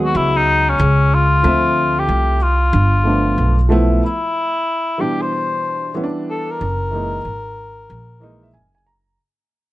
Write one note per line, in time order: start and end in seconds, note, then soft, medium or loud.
0.00 0.12 D#2 medium
0.00 0.74 F#3 medium
0.00 0.75 G#3 medium
0.00 0.75 B3 medium
0.00 0.76 F#4 medium
0.05 0.18 F#4 medium
0.15 0.76 C#2 medium
0.15 0.38 E4 loud
0.37 0.71 D#4 medium
0.69 1.16 C#4 medium
0.79 1.41 C#2 loud
1.14 2.00 F4 loud
1.43 2.05 D2 loud
1.43 2.36 F3 medium
1.43 2.36 A3 medium
1.43 2.37 C4 medium
1.43 2.37 E5 medium
1.99 2.44 G4 medium
2.08 2.70 C2 medium
2.42 3.71 F4 medium
2.73 3.34 G1 loud
3.04 3.53 F3 medium
3.04 3.54 A3 medium
3.04 3.55 B3 medium
3.04 3.55 D4 medium
3.38 3.99 B1 medium
3.69 4.02 F3 medium
3.69 4.02 A3 medium
3.69 4.03 B3 medium
3.69 4.03 E4 medium
4.05 5.02 E4 medium
4.98 5.92 B2 medium
4.98 5.91 E3 medium
4.98 5.91 G3 medium
4.98 5.92 D4 medium
4.98 5.23 G4 medium
5.21 5.97 C5 loud
5.94 6.60 E3 medium
5.94 6.60 G3 medium
5.94 6.60 B3 medium
5.94 6.05 C#4 medium
6.04 6.64 D4 medium
6.30 6.53 A4 medium
6.51 8.55 A#4 loud
6.61 7.22 F#1 medium
6.91 7.17 E3 medium
6.91 7.18 G#3 medium
6.91 7.18 A#3 medium
6.91 7.19 D#4 medium
7.25 7.86 G#1 medium
7.90 8.51 A#1 medium
8.20 8.46 E3 medium
8.20 8.47 G#3 medium
8.20 8.47 A#3 medium
8.20 8.48 D#4 medium
8.20 8.41 D#5 medium
8.43 8.53 E5 medium
8.54 9.15 F#1 medium
8.54 8.73 G#5 medium
8.75 8.85 G#5 medium
8.87 9.16 A#5 medium